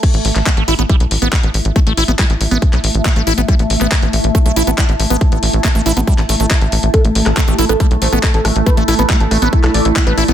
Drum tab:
CC |x---------------|----------------|----------------|----------------|
HH |xxoxxxoxxxoxxxox|xxoxxxoxxxoxxxox|xxoxxxoxxxoxxxox|xxoxxxoxxxoxxxox|
CP |---xx-------x---|----x----x--x---|---xx-------x---|----x----x--x---|
SD |----------------|----------------|----------------|----------------|
BD |o---o---o---o---|o---o---o---o---|o---o---o---o---|o---o---o---o---|

CC |----------------|----------------|
HH |xxoxxxoxxxoxxxox|xxoxxxoxxxoxxxox|
CP |---xx-------x---|----x----x--x---|
SD |r--r---r---r--r-|--r---r--r---r--|
BD |o---o---o---o---|o---o---o---o---|